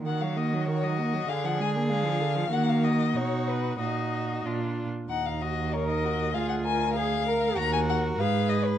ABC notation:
X:1
M:2/4
L:1/16
Q:1/4=96
K:Ebm
V:1 name="Violin"
g f e2 d e3 | f g a2 f4 | g f e2 d2 =B2 | e4 z4 |
g f e2 d e3 | f g a2 f4 | b a g2 f2 e c |]
V:2 name="Violin"
G8 | A8 | G4 ^F4 | G4 F2 z2 |
E2 G2 E2 G2 | A2 B2 A2 B2 | B4 c4 |]
V:3 name="Viola"
E, G, B, G, E, G, B, G, | =D, F, A, B, A, F, D, F, | B,4 ^D4 | E4 =D3 z |
z4 B4 | F4 A2 B2 | G4 A4 |]
V:4 name="Cello" clef=bass
E,8 | =D,8 | E,4 =B,,4 | B,,4 B,,2 z2 |
E,,8 | =D,,8 | E,,4 A,,4 |]